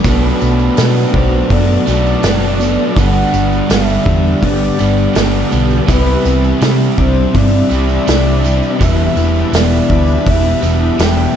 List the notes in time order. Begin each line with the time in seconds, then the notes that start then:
0.03 B1 B2 F#3 A3 B3 F#4 D5 A5 B5, kick, open hi-hat, tambourine
0.07 D4 B4
0.41 B1 F#3 A3 B3, tambourine
0.59 tambourine
0.77 B2 F#3 A3 B3 D4, snare, open hi-hat, tambourine
0.96 tambourine
1.14 B1 F#3 B3 D4 C5, kick
1.50 F#2 B2 F#3 A3 B3 D5, kick, open hi-hat
1.86 B1 B2 A3 B3 D4, tambourine
1.90 F#3
2.06 tambourine
2.23 F#1 B2 F#3 B3 D4, snare, open hi-hat, tambourine
2.59 F#3 A3 B3 D4, tambourine
2.79 tambourine
2.96 G1 G2 D3 G3 B3 D4 G4 F#5, kick, open hi-hat, tambourine
3.32 G1 D3 G3 B3, tambourine
3.52 tambourine
3.69 G1 G2 D3 G3 B3 D4 E5, snare, open hi-hat, tambourine
3.89 tambourine
4.06 E2 D3 G3 D4, kick, tambourine
4.41 G1 G2 D3 G3 B3, kick, open hi-hat
4.46 D5
4.79 G1 G2 D3 G3 B3 D4, tambourine
4.98 tambourine
5.15 G1 G2 D3 G3 B3 D4, snare, open hi-hat, tambourine
5.50 B1 G3 B3 D4, tambourine
5.55 D3
5.70 tambourine
5.88 C2 C3 E3 G3 C4 D4 E4 B4 E5, kick, open hi-hat, tambourine
6.25 C2 E3 G3 C4, tambourine
6.44 tambourine
6.61 C3 G3 C4 E4, snare, open hi-hat, tambourine
6.80 tambourine
6.98 C2 G3 C4 D4 C5, kick, tambourine
7.34 G2 C3 E3 G3 C4 D5, kick, open hi-hat
7.69 C2 C3 G3 C4 E4, tambourine
7.89 tambourine
8.06 C2 C3 G3 C4 D4 E4, snare, open hi-hat, tambourine
8.43 G3 C4 E4, tambourine
8.63 tambourine
8.79 E1 E2 B2 E3 G3 B3 E4 G4, kick, open hi-hat, tambourine
8.83 E5
8.99 tambourine
9.16 E1 B2 E3, tambourine
9.36 tambourine
9.52 E1 E2 B2 E3 G3 B3 E4 D5, snare, open hi-hat, tambourine
9.72 tambourine
9.89 D2 B2 E3 D4, kick, tambourine
10.08 tambourine
10.26 E1 E2 B2 E3 E5, kick, open hi-hat, tambourine
10.61 E1 B2 E3 G3 B3 E4, tambourine
10.98 E1 E2 B2 E3 G3 B3 D4 E4, snare, open hi-hat, tambourine
11.03 G5
11.18 tambourine